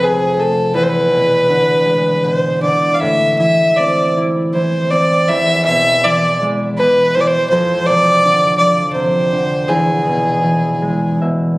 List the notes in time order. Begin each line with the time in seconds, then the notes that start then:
Already playing: F2 A3 C4
0.01 C3 G#4
0.38 A3 A4
0.75 E2 B4
0.83 C5
0.89 B4
1.11 B2
1.49 D3
1.86 G#3
2.24 B2 C5
2.62 D3 D5
2.94 F5
3.00 A2 E5
3.39 E3 E5
3.77 C4 D5
4.17 E4
4.54 E3 C5
4.91 C4 D5
5.28 E2 E5
5.65 B2 E5
6.04 E3 D5
6.42 G#3
6.78 B2 B4
7.15 E3 C5
7.21 D5
7.27 C5
7.50 F2 C5
7.87 C3 D5
8.24 D3
8.58 F3 D5
8.94 C3 C5
9.32 D3
9.68 E2 G#4
10.07 B2
10.44 E3
10.82 G#3
11.21 B2 E5